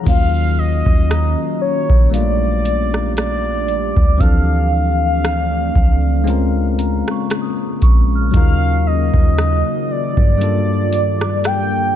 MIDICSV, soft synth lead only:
0, 0, Header, 1, 2, 480
1, 0, Start_track
1, 0, Tempo, 1034483
1, 31, Time_signature, 4, 2, 24, 8
1, 5548, End_track
2, 0, Start_track
2, 0, Title_t, "Soft synth lead"
2, 0, Program_c, 0, 80
2, 35, Note_on_c, 0, 77, 113
2, 271, Note_on_c, 0, 75, 99
2, 278, Note_off_c, 0, 77, 0
2, 747, Note_off_c, 0, 75, 0
2, 750, Note_on_c, 0, 73, 92
2, 973, Note_off_c, 0, 73, 0
2, 989, Note_on_c, 0, 74, 103
2, 1451, Note_off_c, 0, 74, 0
2, 1467, Note_on_c, 0, 74, 101
2, 1947, Note_on_c, 0, 77, 103
2, 1954, Note_off_c, 0, 74, 0
2, 3389, Note_off_c, 0, 77, 0
2, 3876, Note_on_c, 0, 77, 109
2, 4114, Note_on_c, 0, 75, 101
2, 4121, Note_off_c, 0, 77, 0
2, 4597, Note_on_c, 0, 74, 102
2, 4604, Note_off_c, 0, 75, 0
2, 5316, Note_on_c, 0, 79, 114
2, 5323, Note_off_c, 0, 74, 0
2, 5548, Note_off_c, 0, 79, 0
2, 5548, End_track
0, 0, End_of_file